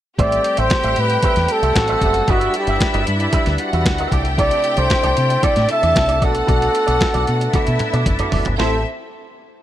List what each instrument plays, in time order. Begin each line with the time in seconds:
0.18 fingered electric bass A1, tonewheel organ G3 A3 C4, clean electric guitar G4 C5 E5, violin section G4 G5, flugelhorn D5, kick, closed hi-hat
0.32 closed hi-hat
0.44 muted clean electric guitar stroke, closed hi-hat
0.57 fingered electric bass A1, clean electric guitar G4 C5 E5, flugelhorn C5, closed hi-hat
0.70 kick, snare, closed hi-hat
0.84 fingered electric bass A1, clean electric guitar G4 C5 E5, closed hi-hat
0.96 fingered electric bass A2, muted clean electric guitar stroke, closed hi-hat
1.00 flugelhorn B4
1.10 muted clean electric guitar stroke, closed hi-hat
1.23 clean electric guitar G4 C5 E5, kick, closed hi-hat
1.36 fingered electric bass E2, muted clean electric guitar stroke, snare, closed hi-hat
1.48 flugelhorn A4, muted clean electric guitar stroke, closed hi-hat
1.63 fingered electric bass C2, clean electric guitar G4 C5 E5, closed hi-hat
1.76 fingered electric bass A1, violin section F#4 F#5, kick, snare, closed hi-hat
1.88 clean electric guitar G4 C5 E5, closed hi-hat
2.01 fingered electric bass F#1, clean electric guitar G4 C5 E5, kick, closed hi-hat
2.14 muted clean electric guitar stroke, closed hi-hat
2.28 fingered electric bass G1, tonewheel organ D4 E4 B4, violin section E4 E5, flugelhorn F#4, clean electric guitar G4 B4 E5, kick, closed hi-hat
2.41 closed hi-hat
2.54 muted clean electric guitar stroke, closed hi-hat
2.58 flugelhorn G4
2.67 fingered electric bass G1, clean electric guitar G4 B4 E5, closed hi-hat
2.81 muted clean electric guitar stroke, kick, snare, closed hi-hat
2.94 fingered electric bass G1, clean electric guitar G4 B4 E5, closed hi-hat
3.07 fingered electric bass G2, muted clean electric guitar stroke, closed hi-hat
3.20 muted clean electric guitar stroke, closed hi-hat
3.33 clean electric guitar G4 B4 E5, kick, closed hi-hat
3.46 fingered electric bass D2, muted clean electric guitar stroke, snare, closed hi-hat
3.58 violin section F#4 F#5, muted clean electric guitar stroke, closed hi-hat
3.73 fingered electric bass E2, clean electric guitar G4 B4 E5, closed hi-hat
3.85 fingered electric bass D2, kick, snare, closed hi-hat
3.98 clean electric guitar G4 B4 E5, closed hi-hat
4.12 fingered electric bass C2, tonewheel organ C3 A3, clean electric guitar E4 A4 D5, violin section G4 G5, kick, closed hi-hat
4.25 muted clean electric guitar stroke, closed hi-hat
4.38 clean electric guitar E4 A4 D5, flugelhorn D5, kick, closed hi-hat
4.51 closed hi-hat
4.64 muted clean electric guitar stroke, closed hi-hat
4.77 fingered electric bass C2, clean electric guitar E4 A4 D5, flugelhorn C5, closed hi-hat
4.90 muted clean electric guitar stroke, kick, snare, closed hi-hat
5.03 fingered electric bass C2, clean electric guitar E4 A4 D5, closed hi-hat
5.17 fingered electric bass C3, closed hi-hat
5.30 muted clean electric guitar stroke, closed hi-hat
5.43 clean electric guitar E4 A4 D5, flugelhorn D5, kick, closed hi-hat
5.56 fingered electric bass A2, muted clean electric guitar stroke, snare, closed hi-hat
5.69 violin section A4 A5, flugelhorn E5, muted clean electric guitar stroke, closed hi-hat
5.82 fingered electric bass E2, clean electric guitar E4 A4 D5, closed hi-hat
5.96 fingered electric bass C2, muted clean electric guitar stroke, kick, snare, closed hi-hat
6.08 clean electric guitar E4 A4 D5, closed hi-hat
6.21 fingered electric bass B1, tonewheel organ B3, clean electric guitar F#4 A4 D5, violin section F#4 F#5, kick, closed hi-hat
6.25 flugelhorn A4
6.35 muted clean electric guitar stroke, closed hi-hat
6.47 fingered electric bass B1, clean electric guitar F#4 A4 D5, kick, closed hi-hat
6.62 closed hi-hat
6.74 muted clean electric guitar stroke, closed hi-hat
6.86 fingered electric bass B1, clean electric guitar F#4 A4 D5, closed hi-hat
7.00 muted clean electric guitar stroke, kick, snare, closed hi-hat
7.14 fingered electric bass B1, clean electric guitar F#4 A4 D5, closed hi-hat
7.27 fingered electric bass B2, muted clean electric guitar stroke, closed hi-hat
7.41 muted clean electric guitar stroke, closed hi-hat
7.53 violin section E4 E5, clean electric guitar F#4 A4 D5, kick, closed hi-hat, high tom
7.67 fingered electric bass B2, muted clean electric guitar stroke, closed hi-hat
7.79 muted clean electric guitar stroke, closed hi-hat, mid tom
7.93 fingered electric bass B2, clean electric guitar F#4 A4 D5, closed hi-hat
8.06 fingered electric bass F#1, muted clean electric guitar stroke, kick, closed hi-hat, mid tom
8.19 clean electric guitar F#4 A4 D5, closed hi-hat, mid tom
8.32 fingered electric bass F#1, clean electric guitar F#4 A4 D5, floor tom, open hi-hat
8.45 fingered electric bass G1, muted clean electric guitar stroke, closed hi-hat, floor tom
8.58 fingered electric bass A1, tonewheel organ A2 A3 C4 G4, violin section C4 A4 E5, clean electric guitar E4 G4 C5, flugelhorn A4, snare